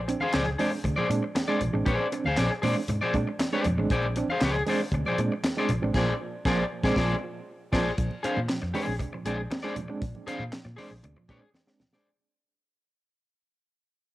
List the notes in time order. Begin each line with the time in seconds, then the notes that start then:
Already playing: A#1
0.08 C4 D4, muted clean electric guitar stroke, closed hi-hat
0.20 G#4 C5 F5, high conga
0.33 C#2 A#2 F3 G#4 C5 D5, snare, clap, closed hi-hat
0.46 muted clean electric guitar stroke, muted conga
0.59 G#3 C4 D4 G#4 C5 D5, open hi-hat, high conga
0.71 C4 D4, muted clean electric guitar stroke
0.84 D2 C4 D4, muted clean electric guitar stroke, kick, closed hi-hat, muted conga, low conga
0.96 A#2 F3 G#4 C5 D5, muted conga
1.09 A#2 G#3 C4 D4, muted clean electric guitar stroke, closed hi-hat
1.23 muted clean electric guitar stroke
1.35 muted clean electric guitar stroke, snare, clap, closed hi-hat, muted conga, high conga
1.48 G#3 C4 D4 G#4 C5 D5, muted conga
1.61 A#1 A#2, muted clean electric guitar stroke, closed hi-hat, high conga, low conga
1.73 A1 G#3 C4 D4, muted clean electric guitar stroke
1.86 A#1 A#2 F3 G#4 C5 D5, kick, closed hi-hat
1.99 muted conga
2.12 C4 D4, muted clean electric guitar stroke, closed hi-hat
2.24 D2 G#4 C5 F5, high conga
2.37 A#1 A#2 F3 G#4 C5 D5, snare, clap, closed hi-hat, muted conga
2.51 muted clean electric guitar stroke
2.62 A#2 G#3 C4 D4 G#4 C5 D5, open hi-hat, high conga
2.76 C4 D4, muted clean electric guitar stroke
2.88 G#2 C4 D4, muted clean electric guitar stroke, closed hi-hat, low conga
3.01 A#2 F3 G#4 C5 D5
3.14 A#2 G#3 C4 D4, muted clean electric guitar stroke, kick, closed hi-hat
3.27 muted clean electric guitar stroke
3.39 muted clean electric guitar stroke, snare, clap, closed hi-hat, high conga
3.52 G#3 C4 D4 G#4 C5 D5, muted conga
3.65 F2 A#2 F3, muted clean electric guitar stroke, closed hi-hat, high conga, low conga
3.77 A1 G#3 C4 D4, muted clean electric guitar stroke
3.90 A#1 A#2 F3 G#4 C5 D5, kick, closed hi-hat, muted conga
4.03 muted conga
4.16 C4 D4, muted clean electric guitar stroke, closed hi-hat
4.28 C5 F5, high conga
4.32 G#4
4.41 C#2 A#2 F3 G#4 C5, snare, clap, closed hi-hat, muted conga
4.45 D5
4.56 muted clean electric guitar stroke
4.67 G#3 C4 D4 G#4 C5 D5, open hi-hat, high conga
4.80 C4 D4, muted clean electric guitar stroke
4.92 D2 C4 D4, muted clean electric guitar stroke, kick, closed hi-hat, muted conga, low conga
5.05 A#2 F3 G#4 C5 D5, muted conga
5.18 A#2 G#3 C4 D4, muted clean electric guitar stroke, closed hi-hat
5.32 muted clean electric guitar stroke
5.43 muted clean electric guitar stroke, snare, clap, closed hi-hat, muted conga, high conga
5.57 G#3 C4 D4 G#4 C5 D5, muted conga
5.69 A#1 A#2 F3, muted clean electric guitar stroke, closed hi-hat, high conga, low conga
5.82 A1 G#3 C4 D4, muted clean electric guitar stroke
5.94 A#1 A#2 F3 D4 G#4 C5 D5, kick, snare, crash
6.45 A#1 A#2 F3 D4 G#4 C5 D5, kick, snare
6.82 A#1 F3 G#3 C4 D4 G#4 C5 D5, kick, snare
6.95 A#1 A#2 F3 D4 G#4 C5 D5, kick, snare
7.72 A#1 A#2 F3 D4 G#4 C5 D5, kick, snare, crash
7.98 A#1 A#2 F3, kick, closed hi-hat, muted conga
8.11 muted conga
8.23 C4 D4 G#4 C5 F5, muted fingered electric bass stroke, closed hi-hat
8.36 A#2, high conga
8.49 A#2 F3, snare, clap, closed hi-hat
8.62 F2, muted clean electric guitar stroke, muted conga
8.74 G#3 C4 D4 G#4 C5 D5, open hi-hat, high conga
8.87 A#1 C4 D4, muted clean electric guitar stroke
8.99 C4 D4, muted clean electric guitar stroke, kick, closed hi-hat, muted conga, low conga
9.13 A#2 F3, muted clean electric guitar stroke
9.25 A#1 G#3 C4 D4 G#4 C5 D5, closed hi-hat
9.38 muted clean electric guitar stroke
9.51 muted clean electric guitar stroke, snare, clap, closed hi-hat, muted conga, high conga
9.63 G#3 C4 D4 G#4 C5 D5, muted conga
9.75 A#2 F3, muted clean electric guitar stroke, closed hi-hat, high conga, low conga
9.88 G#3 C4 D4, muted clean electric guitar stroke
10.01 A#1 A#2, kick, closed hi-hat, muted conga
10.15 muted conga
10.27 C4 D4 G#4 C5 F5, muted fingered electric bass stroke, closed hi-hat
10.39 A#2, high conga
10.53 A#2 F3, snare, clap, closed hi-hat, muted conga
10.65 A#2, muted clean electric guitar stroke, muted conga
10.76 G#3 C4 D4 G#4 C5 D5, open hi-hat, high conga
10.91 A#1 C4 D4, muted clean electric guitar stroke
11.03 D2 C4 D4, muted clean electric guitar stroke, closed hi-hat, low conga
11.16 A#2 F3, muted clean electric guitar stroke, muted conga
11.29 A#2 G#3 C4 D4 G#4 C5 D5, kick, closed hi-hat
11.42 muted clean electric guitar stroke
11.54 muted clean electric guitar stroke, snare, muted conga, high conga
11.67 G#3 C4 D4, muted clean electric guitar stroke, snare
11.80 A#2 F3, snare, high conga, low conga
11.93 G#3 C4 D4 G#4 C5 D5, snare